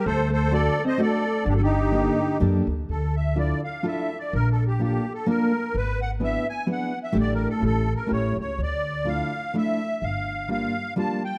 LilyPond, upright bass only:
\new Staff \with { instrumentName = "Upright bass" } { \clef bass \time 3/4 \key g \minor \tempo 4 = 127 d,2 r4 | g,,2 fis,8 d,8 | \key d \minor d,2 r4 | bes,,2 r4 |
gis,,2 r4 | a,,4 a,,4 a,,8 cis,8 | d,2 r4 | g,,2 r4 | }